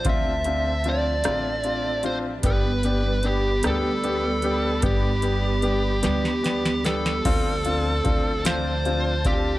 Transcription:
<<
  \new Staff \with { instrumentName = "String section" } { \time 6/8 \key d \minor \tempo 4. = 50 <f' c'' e'' a''>2. | <g' b' d'' b''>2.~ | <g' b' d'' b''>2. | <f' c'' d'' a''>2. | }
  \new Staff \with { instrumentName = "Lead electric guitar" } { \time 6/8 \key d \minor e''4 d''4. c''8 | b'4 g'8 a'4. | g'4. g'4 a'8~ | a'4. c''4 g'8 | }
  \new Staff \with { instrumentName = "Grand piano" } { \time 6/8 \key d \minor <c' d' f'>8 <c' d' f'>8 <c' d' f'>8 <c' d' f'>8 <c' d' f'>8 <c' d' f'>8 | <b d' g'>8 <b d' g'>8 <b d' g'>8 <b d' g'>8 <b d' g'>8 <b d' g'>8 | <b d' g'>8 <b d' g'>8 <b d' g'>8 <b d' g'>8 <b d' g'>8 <b d' g'>8 | <c' d' f'>8 <c' d' f'>8 <c' d' f'>8 <c' d' f'>8 <c' d' f'>8 <c' d' f'>8 | }
  \new Staff \with { instrumentName = "Steel-string acoustic guitar" } { \time 6/8 \key d \minor <d f c' d' a'>16 <c' d' a'>8 <c' d' a'>16 <f c' d' a'>8 <d f c' d' a'>16 <c' d' a'>8 <c' d' a'>16 <f c' d' a'>8 | <g, d g b d' g'>16 <g b d' g'>8 <g b d' g'>16 <g b d' g'>8 <g, d g b d' g'>16 <g b d' g'>8 <g b d' g'>16 <g b d' g'>8 | <g, d g b d' g'>16 <g b d' g'>8 <g b d' g'>16 <g b d' g'>8 <g, d g b d' g'>16 <g b d' g'>8 <g b d' g'>16 <g b d' g'>8 | <d f c' d' a'>4 <f c' d' a'>8 <d f c' d' a'>4 <c' d' a'>8 | }
  \new Staff \with { instrumentName = "Upright bass" } { \clef bass \time 6/8 \key d \minor d,4. a,,4. | g,,4. d,4. | g,,4. d,4. | d,4 d,2 | }
  \new DrumStaff \with { instrumentName = "Drums" } \drummode { \time 6/8 <hh bd>8 hh8 hh8 <hh ss>8 hh8 hh8 | <hh bd>8 hh8 hh8 <hh ss>8 hh8 hh8 | <hh bd>8 hh8 hh8 <hh sn>16 sn16 <hh sn>16 sn16 <hh sn>16 sn16 | <cymc hh bd>8 hh8 <hh bd>8 <hh sn>8 hh8 <hh bd>8 | }
>>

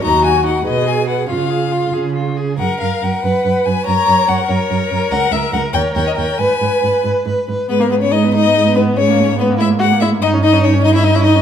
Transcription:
<<
  \new Staff \with { instrumentName = "Violin" } { \time 6/8 \key fis \major \tempo 4. = 95 ais''8 gis''8 fis''8 dis''8 gis''8 fis''8 | eis''4. r4. | fis''8 eis''8 fis''4. gis''8 | ais''4 fis''8 cis''4. |
\key gis \minor fis''8 e''8 fis''8 g''8 g''16 dis''16 g''8 | gis''4. r4. | b'16 ais'16 b'16 cis''16 dis''8 dis''4 b'8 | cis''4 b'8 e''8 fis''8 e''8 |
dis''8 dis''8 cis''8 dis''16 e''16 dis''16 e''16 dis''8 | }
  \new Staff \with { instrumentName = "Violin" } { \time 6/8 \key fis \major dis'8 fis'8 dis'8 b'8 gis'8 b'8 | eis'8 gis'8 eis'8 gis'8 eis'8 gis'8 | ais'8 ais'8 ais'8 b'8 b'8 b'8 | ais'8 ais'8 ais'8 ais'8 ais'8 ais'8 |
\key gis \minor ais'8 ais'8 ais'8 cis''8 cis''8 cis''8 | b'8 b'8 b'8 b'8 b'8 b'8 | b16 ais16 b16 cis'16 dis'8 dis'4 b8 | cis'4 b8 e'8 fis'8 e'8 |
dis'8 dis'8 cis'8 dis'16 e'16 dis'16 e'16 dis'8 | }
  \new Staff \with { instrumentName = "Viola" } { \time 6/8 \key fis \major fis'4. gis'4. | eis'2~ eis'16 r8. | ais'4. b'4. | cis''4. ais'4.~ |
\key gis \minor ais'4. ais'4. | b'2~ b'16 r8. | gis16 b16 gis16 b16 gis16 b16 gis16 b16 gis16 b16 gis16 b16 | gis16 ais16 gis16 ais16 gis16 ais16 gis16 ais16 gis16 ais16 gis16 ais16 |
dis'16 cis'16 dis'16 cis'16 dis'16 cis'16 dis'16 cis'16 dis'16 cis'16 dis'16 cis'16 | }
  \new Staff \with { instrumentName = "Cello" } { \clef bass \time 6/8 \key fis \major dis,4. b,4. | cis4. cis4. | fis,8 fis,8 fis,8 fis,8 fis,8 fis,8 | fis,8 fis,8 fis,8 fis,8 fis,8 fis,8 |
\key gis \minor cis,8 cis,8 cis,8 dis,8 dis,8 dis,8 | gis,8 gis,8 gis,8 gis,8 gis,8 gis,8 | gis,2.~ | gis,2. |
g,2. | }
>>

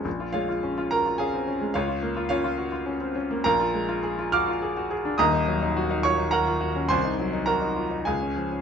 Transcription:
\new Staff \with { instrumentName = "Grand piano" } { \time 3/4 \key bes \minor \tempo 4 = 105 << { r8 <f' des'' f''>4 <bes' bes''>8 <aes' f'' aes''>4 | <f' des'' f''>4 <f' des'' f''>2 | <bes' f'' bes''>4. <f'' d''' f'''>4. | <ees'' bes'' ees'''>4. <des'' des'''>8 <bes' ges'' bes''>4 |
<c'' aes'' c'''>4 <bes' bes''>4 <aes' f'' aes''>4 | } \\ { bes,,16 f'16 aes16 f'16 des'16 f'16 ges'16 f'16 des'16 c'16 des'16 aes16 | des,16 f'16 bes16 f'16 des'16 f'16 ges'16 f'16 des'16 c'16 des'16 bes16 | bes,,16 f'16 aes16 f'16 aes'16 f'16 ges'16 f'16 aes'16 ges'16 aes'16 d'16 | <ees,, ees,>16 ees'16 ges16 ees'16 ges'16 ees'16 f'16 ees'16 ges'16 f'16 ges'16 des'16 |
c,16 ees'16 ges16 ees'16 ges'16 ees'16 f'16 ees'16 des,16 des'16 f16 des'16 | } >> }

